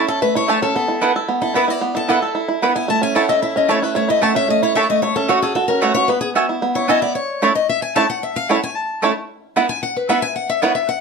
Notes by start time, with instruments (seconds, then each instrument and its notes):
Already playing: five-string banjo C#4 E4
0.08 steel-string acoustic guitar A4, five-string banjo A4
0.22 five-string banjo A3, steel-string acoustic guitar B4
0.35 five-string banjo E4, steel-string acoustic guitar C#5
0.48 mandolin A3 E4 C#5 A5, five-string banjo A3
0.62 five-string banjo C#4, steel-string acoustic guitar A4
0.75 five-string banjo B3, steel-string acoustic guitar A4
0.88 five-string banjo E4
1.01 mandolin B3 E4 B4 F#5, five-string banjo E4
1.16 five-string banjo A4
1.29 five-string banjo B3
1.42 five-string banjo E4, steel-string acoustic guitar A4
1.54 five-string banjo B3, mandolin B3 E4 B4 F#5, steel-string acoustic guitar B4
1.68 five-string banjo E4, steel-string acoustic guitar D5
1.81 five-string banjo B3
1.95 five-string banjo E4, steel-string acoustic guitar A4
2.08 mandolin B3 E4 B4 F#5, five-string banjo E4, steel-string acoustic guitar A4
2.22 five-string banjo A4
2.35 five-string banjo E4
2.48 five-string banjo E4
2.62 five-string banjo B3, mandolin B3 E4 B4 F#5
2.76 five-string banjo E4, steel-string acoustic guitar G#5
2.88 five-string banjo A3, steel-string acoustic guitar A5
3.02 five-string banjo C#4, steel-string acoustic guitar G#5
3.15 mandolin A3 E4 C#5 A5, five-string banjo E4, steel-string acoustic guitar F#5
3.29 five-string banjo A4, steel-string acoustic guitar D#5
3.42 five-string banjo E4, steel-string acoustic guitar E5
3.56 five-string banjo C#4, steel-string acoustic guitar D#5
3.68 mandolin A3 E4 C#5 A5, five-string banjo A3, steel-string acoustic guitar C#5
3.82 five-string banjo E4, steel-string acoustic guitar B4
3.95 five-string banjo A3, steel-string acoustic guitar C#5
4.08 five-string banjo E4, steel-string acoustic guitar D#5
4.21 five-string banjo A3, mandolin A3 E4 C#5 A5, steel-string acoustic guitar F#5
4.35 five-string banjo C#4, steel-string acoustic guitar E5
4.48 five-string banjo A3, steel-string acoustic guitar D#5
4.63 five-string banjo E4, steel-string acoustic guitar C#5
4.75 mandolin A3 E4 C#5 A5, five-string banjo A4, steel-string acoustic guitar E5
4.90 five-string banjo A3, steel-string acoustic guitar D#5
5.02 five-string banjo A3, steel-string acoustic guitar C#5
5.16 five-string banjo C#4, steel-string acoustic guitar A4
5.28 mandolin A3 F#4 C#5 F#5, five-string banjo F#4, steel-string acoustic guitar F#4
5.42 steel-string acoustic guitar G#4, five-string banjo A4
5.55 five-string banjo F#4, steel-string acoustic guitar A4
5.68 five-string banjo C#4, steel-string acoustic guitar A#4
5.81 mandolin A3 F#4 C#5 F#5, five-string banjo A3, steel-string acoustic guitar B4
5.94 five-string banjo F#4, steel-string acoustic guitar C#5
6.08 five-string banjo B3, steel-string acoustic guitar B4
6.21 steel-string acoustic guitar G#4
6.35 mandolin B3 F#4 E5 G#5, five-string banjo B3
6.49 five-string banjo E4
6.62 five-string banjo B3
6.75 five-string banjo E4, steel-string acoustic guitar C#5
6.88 mandolin B3 F#4 E5 G#5, five-string banjo E4, steel-string acoustic guitar D#5
7.02 five-string banjo B3, steel-string acoustic guitar D5
7.15 steel-string acoustic guitar C#5
7.42 mandolin A3 E4 C#5 A5, five-string banjo A3 C#4 E4
7.55 steel-string acoustic guitar D#5
7.69 steel-string acoustic guitar E5
7.82 steel-string acoustic guitar G#5
7.96 mandolin A3 E4 C#5 A5, five-string banjo A3 C#4 E4, steel-string acoustic guitar A5
8.10 steel-string acoustic guitar F#5
8.23 steel-string acoustic guitar E5
8.36 steel-string acoustic guitar F5
8.49 mandolin A3 E4 C#5 A5, five-string banjo A3 C#4 E4, steel-string acoustic guitar F#5
8.63 steel-string acoustic guitar G#5
8.76 steel-string acoustic guitar A5
9.02 mandolin A3 E4 C#5 A5, five-string banjo A3 C#4 E4
9.56 mandolin B3 E4 B4 F#5, five-string banjo B3 E4
9.69 steel-string acoustic guitar G#5
9.83 steel-string acoustic guitar F#5
9.96 steel-string acoustic guitar B4
10.09 mandolin B3 E4 B4 F#5, five-string banjo B3 E4, steel-string acoustic guitar E5
10.22 steel-string acoustic guitar G#5
10.36 steel-string acoustic guitar F#5
10.49 steel-string acoustic guitar E5
10.62 mandolin B3 E4 B4 F#5, five-string banjo B3 E4, steel-string acoustic guitar C#5
10.75 steel-string acoustic guitar E5
10.89 steel-string acoustic guitar F#5